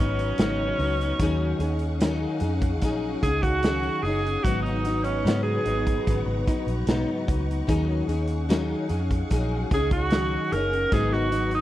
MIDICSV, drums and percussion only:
0, 0, Header, 1, 2, 480
1, 0, Start_track
1, 0, Key_signature, -6, "minor"
1, 0, Tempo, 810811
1, 712, Time_signature, 4, 2, 24, 8
1, 6874, End_track
2, 0, Start_track
2, 0, Title_t, "Drums"
2, 112, Note_on_c, 9, 42, 52
2, 171, Note_off_c, 9, 42, 0
2, 223, Note_on_c, 9, 42, 81
2, 234, Note_on_c, 9, 38, 113
2, 283, Note_off_c, 9, 42, 0
2, 293, Note_off_c, 9, 38, 0
2, 470, Note_on_c, 9, 46, 45
2, 529, Note_off_c, 9, 46, 0
2, 597, Note_on_c, 9, 42, 52
2, 656, Note_off_c, 9, 42, 0
2, 707, Note_on_c, 9, 36, 95
2, 707, Note_on_c, 9, 42, 84
2, 766, Note_off_c, 9, 42, 0
2, 767, Note_off_c, 9, 36, 0
2, 947, Note_on_c, 9, 42, 66
2, 1006, Note_off_c, 9, 42, 0
2, 1059, Note_on_c, 9, 42, 45
2, 1118, Note_off_c, 9, 42, 0
2, 1187, Note_on_c, 9, 42, 97
2, 1194, Note_on_c, 9, 38, 90
2, 1246, Note_off_c, 9, 42, 0
2, 1253, Note_off_c, 9, 38, 0
2, 1420, Note_on_c, 9, 42, 68
2, 1479, Note_off_c, 9, 42, 0
2, 1548, Note_on_c, 9, 42, 50
2, 1550, Note_on_c, 9, 36, 84
2, 1607, Note_off_c, 9, 42, 0
2, 1609, Note_off_c, 9, 36, 0
2, 1666, Note_on_c, 9, 42, 84
2, 1671, Note_on_c, 9, 36, 77
2, 1726, Note_off_c, 9, 42, 0
2, 1730, Note_off_c, 9, 36, 0
2, 1911, Note_on_c, 9, 36, 84
2, 1912, Note_on_c, 9, 42, 76
2, 1970, Note_off_c, 9, 36, 0
2, 1971, Note_off_c, 9, 42, 0
2, 2031, Note_on_c, 9, 36, 94
2, 2035, Note_on_c, 9, 42, 48
2, 2090, Note_off_c, 9, 36, 0
2, 2095, Note_off_c, 9, 42, 0
2, 2147, Note_on_c, 9, 42, 81
2, 2157, Note_on_c, 9, 38, 106
2, 2206, Note_off_c, 9, 42, 0
2, 2216, Note_off_c, 9, 38, 0
2, 2268, Note_on_c, 9, 42, 30
2, 2327, Note_off_c, 9, 42, 0
2, 2395, Note_on_c, 9, 46, 42
2, 2455, Note_off_c, 9, 46, 0
2, 2525, Note_on_c, 9, 42, 54
2, 2584, Note_off_c, 9, 42, 0
2, 2632, Note_on_c, 9, 36, 96
2, 2637, Note_on_c, 9, 42, 86
2, 2691, Note_off_c, 9, 36, 0
2, 2696, Note_off_c, 9, 42, 0
2, 2758, Note_on_c, 9, 42, 32
2, 2817, Note_off_c, 9, 42, 0
2, 2869, Note_on_c, 9, 42, 65
2, 2928, Note_off_c, 9, 42, 0
2, 2986, Note_on_c, 9, 42, 47
2, 3045, Note_off_c, 9, 42, 0
2, 3119, Note_on_c, 9, 42, 95
2, 3127, Note_on_c, 9, 38, 98
2, 3178, Note_off_c, 9, 42, 0
2, 3186, Note_off_c, 9, 38, 0
2, 3348, Note_on_c, 9, 42, 68
2, 3407, Note_off_c, 9, 42, 0
2, 3473, Note_on_c, 9, 36, 83
2, 3474, Note_on_c, 9, 42, 53
2, 3532, Note_off_c, 9, 36, 0
2, 3533, Note_off_c, 9, 42, 0
2, 3594, Note_on_c, 9, 42, 82
2, 3595, Note_on_c, 9, 36, 80
2, 3653, Note_off_c, 9, 42, 0
2, 3654, Note_off_c, 9, 36, 0
2, 3833, Note_on_c, 9, 36, 96
2, 3835, Note_on_c, 9, 42, 73
2, 3892, Note_off_c, 9, 36, 0
2, 3894, Note_off_c, 9, 42, 0
2, 3953, Note_on_c, 9, 42, 47
2, 4012, Note_off_c, 9, 42, 0
2, 4066, Note_on_c, 9, 42, 77
2, 4076, Note_on_c, 9, 38, 114
2, 4126, Note_off_c, 9, 42, 0
2, 4136, Note_off_c, 9, 38, 0
2, 4311, Note_on_c, 9, 36, 90
2, 4314, Note_on_c, 9, 42, 60
2, 4370, Note_off_c, 9, 36, 0
2, 4373, Note_off_c, 9, 42, 0
2, 4444, Note_on_c, 9, 42, 51
2, 4503, Note_off_c, 9, 42, 0
2, 4551, Note_on_c, 9, 36, 95
2, 4551, Note_on_c, 9, 42, 82
2, 4610, Note_off_c, 9, 36, 0
2, 4610, Note_off_c, 9, 42, 0
2, 4789, Note_on_c, 9, 42, 62
2, 4848, Note_off_c, 9, 42, 0
2, 4898, Note_on_c, 9, 42, 49
2, 4957, Note_off_c, 9, 42, 0
2, 5032, Note_on_c, 9, 42, 95
2, 5039, Note_on_c, 9, 38, 85
2, 5091, Note_off_c, 9, 42, 0
2, 5099, Note_off_c, 9, 38, 0
2, 5264, Note_on_c, 9, 42, 68
2, 5323, Note_off_c, 9, 42, 0
2, 5391, Note_on_c, 9, 36, 77
2, 5391, Note_on_c, 9, 42, 53
2, 5450, Note_off_c, 9, 36, 0
2, 5450, Note_off_c, 9, 42, 0
2, 5508, Note_on_c, 9, 42, 88
2, 5512, Note_on_c, 9, 36, 73
2, 5568, Note_off_c, 9, 42, 0
2, 5571, Note_off_c, 9, 36, 0
2, 5749, Note_on_c, 9, 36, 101
2, 5750, Note_on_c, 9, 42, 75
2, 5808, Note_off_c, 9, 36, 0
2, 5809, Note_off_c, 9, 42, 0
2, 5867, Note_on_c, 9, 42, 46
2, 5868, Note_on_c, 9, 36, 99
2, 5926, Note_off_c, 9, 42, 0
2, 5927, Note_off_c, 9, 36, 0
2, 5981, Note_on_c, 9, 42, 75
2, 5992, Note_on_c, 9, 38, 116
2, 6041, Note_off_c, 9, 42, 0
2, 6051, Note_off_c, 9, 38, 0
2, 6230, Note_on_c, 9, 42, 69
2, 6289, Note_off_c, 9, 42, 0
2, 6353, Note_on_c, 9, 42, 50
2, 6412, Note_off_c, 9, 42, 0
2, 6464, Note_on_c, 9, 42, 84
2, 6465, Note_on_c, 9, 36, 97
2, 6523, Note_off_c, 9, 42, 0
2, 6525, Note_off_c, 9, 36, 0
2, 6587, Note_on_c, 9, 38, 34
2, 6646, Note_off_c, 9, 38, 0
2, 6702, Note_on_c, 9, 42, 69
2, 6761, Note_off_c, 9, 42, 0
2, 6815, Note_on_c, 9, 42, 47
2, 6874, Note_off_c, 9, 42, 0
2, 6874, End_track
0, 0, End_of_file